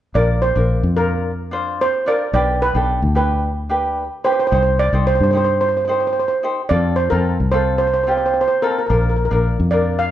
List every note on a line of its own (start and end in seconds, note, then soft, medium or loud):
0.14 0.54 A#1 medium
0.14 0.39 D4 medium
0.14 0.40 F4 medium
0.14 0.40 A#4 medium
0.14 0.43 D5 medium
0.42 0.98 C5 medium
0.56 0.82 A#1 medium
0.56 0.80 D4 medium
0.56 0.81 F4 medium
0.56 0.81 A#4 medium
0.83 1.89 F2 medium
0.96 1.30 D4 medium
0.96 1.30 F4 medium
0.96 1.48 A#4 medium
0.96 1.30 A#4 medium
1.51 1.84 D4 medium
1.51 1.85 F4 medium
1.51 1.85 C5 medium
1.81 2.08 C5 medium
2.06 2.23 D4 medium
2.06 2.23 F4 medium
2.06 2.24 A#4 medium
2.06 2.33 D5 medium
2.33 2.72 B1 medium
2.33 2.58 D4 medium
2.33 2.59 G4 medium
2.33 2.59 B4 medium
2.33 2.59 D5 medium
2.62 3.15 B4 medium
2.74 3.01 B1 medium
2.74 2.99 D4 medium
2.74 3.00 G4 medium
2.74 3.00 A4 medium
3.02 4.08 D2 medium
3.15 3.48 D4 medium
3.15 3.48 G4 medium
3.15 3.49 B4 medium
3.15 3.94 B4 medium
3.69 4.03 D4 medium
3.69 4.03 G4 medium
3.69 4.04 B4 medium
4.24 4.41 D4 medium
4.24 4.42 G4 medium
4.24 4.42 B4 medium
4.24 4.31 C5 medium
4.32 4.38 C5 medium
4.40 4.46 C5 medium
4.47 4.53 C5 medium
4.51 4.91 C2 medium
4.51 4.77 D#4 medium
4.51 4.77 G4 medium
4.51 4.77 C5 medium
4.51 4.61 C5 medium
4.63 4.70 C5 medium
4.79 5.08 D5 medium
4.93 5.19 C2 medium
4.93 5.18 D#4 medium
4.93 5.18 G4 medium
4.93 5.19 C5 medium
5.07 5.14 C5 medium
5.15 5.22 C5 medium
5.20 6.26 G2 medium
5.20 5.30 C5 medium
5.31 5.67 D#4 medium
5.31 5.67 G4 medium
5.31 5.36 C5 medium
5.31 5.67 C5 medium
5.37 5.43 C5 medium
5.44 5.52 C5 medium
5.61 5.68 C5 medium
5.69 5.76 C5 soft
5.77 5.84 C5 soft
5.85 6.21 D#4 medium
5.85 6.22 G4 medium
5.85 5.90 C5 soft
5.89 6.22 C5 medium
5.89 5.99 C5 soft
6.00 6.06 C5 soft
6.07 6.12 C5 soft
6.13 6.18 C5 soft
6.20 6.27 C5 medium
6.28 6.36 C5 medium
6.43 6.60 D#4 medium
6.43 6.60 G4 medium
6.43 6.61 C5 medium
6.69 7.10 F2 medium
6.69 6.95 C4 medium
6.69 6.96 F4 medium
6.69 6.96 A4 medium
6.69 6.98 D5 medium
6.96 7.03 C5 medium
7.10 7.38 F2 medium
7.10 7.37 C4 medium
7.10 7.37 F4 medium
7.10 7.37 A4 medium
7.10 7.53 A#4 medium
7.40 8.45 C2 medium
7.52 7.86 C4 medium
7.52 7.86 F4 medium
7.52 7.87 A4 medium
7.52 7.64 C5 medium
7.78 7.86 C5 medium
7.87 7.92 C5 soft
7.94 8.02 C5 medium
8.04 8.40 C4 medium
8.04 8.10 C5 soft
8.08 8.41 F4 medium
8.08 8.41 G4 medium
8.08 8.16 C5 soft
8.18 8.25 C5 soft
8.26 8.33 C5 medium
8.34 8.40 C5 soft
8.41 8.47 C5 medium
8.48 8.55 C5 medium
8.62 8.79 C4 medium
8.62 8.79 F4 medium
8.62 8.80 A4 medium
8.62 8.70 A#4 medium
8.71 8.77 A#4 soft
8.78 8.85 A#4 soft
8.86 9.29 A#1 medium
8.86 9.14 D4 medium
8.86 9.15 F4 medium
8.86 8.92 A#4 soft
8.91 9.15 A#4 medium
8.91 9.00 A#4 soft
9.02 9.08 A#4 soft
9.09 9.15 A#4 soft
9.16 9.23 A#4 soft
9.25 9.31 A#4 soft
9.31 9.57 A#1 medium
9.31 9.56 D4 medium
9.31 9.56 F4 medium
9.31 9.38 A#4 soft
9.31 9.57 A#4 medium
9.60 10.11 F2 medium
9.71 10.05 D4 medium
9.71 10.05 F4 medium
9.71 10.06 A#4 medium
9.71 10.00 D5 medium
9.99 10.11 F5 medium